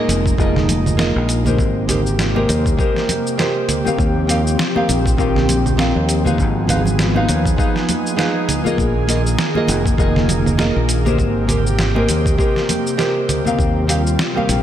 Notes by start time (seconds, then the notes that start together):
Already playing: A#2 G#3 A#3 D#4 F4 G#4 D#5
0.09 F1, closed hi-hat, low conga, shaker
0.26 kick, shaker
0.38 F1 A#3 F4 G#4 D#5, kick, shaker
0.56 snare, low conga
0.69 closed hi-hat, high conga, low conga, shaker
0.86 low conga, shaker
0.97 A#3 F4 G#4 D#5, snare, shaker
1.16 A#1
1.29 closed hi-hat, shaker
1.45 G#3 G4 A#4 C5, high conga, low conga, shaker
1.58 G#1 C3 A#3 G4, kick, shaker
1.88 G#3 G4 A#4 C5, closed hi-hat, low conga, shaker
2.06 shaker
2.19 snare, shaker
2.35 G#3 G4 A#4 C5, high conga
2.49 D#2, closed hi-hat, low conga, shaker
2.66 kick, shaker
2.77 G#3 G4 A#4 C5, kick, shaker
2.96 snare
3.09 closed hi-hat, high conga, low conga, shaker
3.27 shaker
3.38 G#3 G4 A#4 C5, snare, shaker
3.69 closed hi-hat, low conga, shaker
3.85 D#3 C4 G4 F5, high conga, shaker
3.98 D#2 F3 C4, kick, shaker
4.27 D#3 C4 G4 F5, closed hi-hat, shaker
4.47 shaker
4.59 snare, shaker
4.74 D#3 C4 G4 F5, high conga
4.89 A#1, closed hi-hat, low conga, shaker
5.06 kick, shaker
5.17 A#1 D#3 C4 G4 F5, kick, shaker
5.36 snare, low conga
5.49 closed hi-hat, high conga, low conga, shaker
5.66 low conga, shaker
5.77 D#3 C4 G4 F5, snare, shaker
5.96 D#2
6.09 closed hi-hat, shaker
6.24 G#3 D#4 B4 F5, high conga, low conga, shaker
6.38 G#1 B3 G#4, kick, shaker
6.67 G#3 D#4 B4 F5, closed hi-hat, low conga, shaker
6.86 low conga, shaker
6.99 snare, shaker
7.14 G#3 D#4 B4 F5, high conga
7.29 D#2, closed hi-hat, low conga, shaker
7.46 kick, shaker
7.56 G#3 D#4 B4 F5, kick, shaker
7.76 snare
7.89 closed hi-hat, high conga, low conga, shaker
8.07 shaker
8.16 G#3 D#4 B4 F5, snare, shaker
8.49 closed hi-hat, low conga, shaker
8.64 A#3 F4 G#4 D#5, high conga, shaker
8.78 A#1 D#3 A#3, kick, shaker
9.07 A#3 F4 G#4 D#5, closed hi-hat, shaker
9.27 shaker
9.39 snare, shaker
9.54 A#3 F4 G#4 D#5, high conga
9.68 F1, closed hi-hat, low conga, shaker
9.86 kick, shaker
9.97 F1 A#3 F4 G#4 D#5, kick, shaker
10.16 snare, low conga
10.29 closed hi-hat, high conga, low conga, shaker
10.46 low conga, shaker
10.57 A#3 F4 G#4 D#5, snare, shaker
10.76 A#1
10.89 closed hi-hat, shaker
11.05 G#3 G4 A#4 C5, high conga, low conga, shaker
11.19 G#1 C3 G4, kick, shaker
11.47 G#3 G4 A#4 C5, closed hi-hat, low conga, shaker
11.67 shaker
11.79 snare, shaker
11.95 G#3 G4 A#4 C5, high conga
12.08 D#2, closed hi-hat, low conga, shaker
12.26 kick, shaker
12.37 G#3 G4 A#4 C5, kick, shaker
12.56 snare
12.69 closed hi-hat, high conga, low conga, shaker
12.87 shaker
12.97 G#3 G4 A#4 C5, snare, shaker
13.29 closed hi-hat, low conga, shaker
13.45 D#3 C4 G4 F5, high conga, shaker
13.59 D#2 G3 F4, kick, shaker
13.87 D#3 C4 G4 F5, closed hi-hat, shaker
14.07 shaker
14.19 snare, shaker
14.34 D#3 C4 G4 F5, high conga
14.49 A#1, closed hi-hat, low conga, shaker